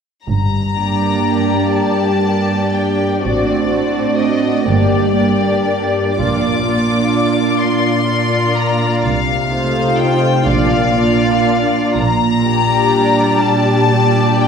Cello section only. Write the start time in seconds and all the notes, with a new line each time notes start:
0.28 G2
1.77 G2
3.23 A2
4.67 G2
6.19 A#2
7.63 A#2
9.04 C3
10.47 A#2
11.97 A#2
13.41 A#2